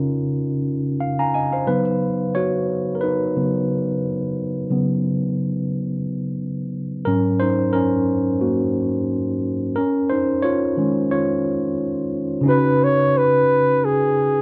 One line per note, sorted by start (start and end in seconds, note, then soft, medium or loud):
0.00 1.61 C#3 medium
0.00 1.62 C#4 medium
0.00 1.63 D#4 medium
0.00 1.64 F4 medium
0.00 1.65 A#4 medium
1.00 1.17 F5 medium
1.19 1.33 F5 medium
1.19 1.33 G#5 medium
1.19 1.33 A#5 medium
1.34 1.52 D#5 medium
1.34 1.51 G#5 medium
1.53 1.84 C5 medium
1.53 1.84 F5 medium
1.67 3.35 C#3 soft
1.67 3.35 F#3 soft
1.67 3.36 B3 soft
1.67 2.31 D#4 medium
1.67 2.36 B4 medium
2.35 2.92 F#4 medium
2.35 2.97 C#5 medium
2.95 3.02 A#4 medium
3.01 4.00 D#4 medium
3.01 3.98 B4 medium
3.36 3.66 C#3 soft
3.36 3.66 F#3 soft
3.36 3.67 B3 soft
4.71 7.02 C#3 soft
4.71 7.02 F#3 soft
4.71 7.03 B3 medium
7.05 8.03 G#2 soft
7.05 8.03 F#3 soft
7.05 7.74 C#4 medium
7.05 7.40 A#4 medium
7.40 7.72 D#4 medium
7.40 7.74 C5 medium
7.73 8.38 C#4 medium
7.73 8.43 A#4 medium
8.41 9.39 A#3 medium
8.41 9.38 F#4 medium
9.76 10.08 C#4 medium
9.76 10.10 A#4 medium
10.10 10.26 D#4 medium
10.10 10.25 C5 medium
10.42 11.07 F4 medium
10.42 11.06 C#5 medium
10.77 11.74 D#3 soft
10.77 11.74 G#3 soft
10.77 11.75 C#4 medium
11.11 12.09 F4 medium
11.11 12.08 C#5 medium
12.41 14.42 C#3 medium
12.41 14.42 C#4 medium
12.46 14.42 D#4 medium
12.46 14.42 F#4 medium
12.46 12.85 B4 loud
12.50 14.42 B4 medium
12.84 13.19 C#5 loud
13.18 13.86 B4 loud
13.85 14.42 G#4 medium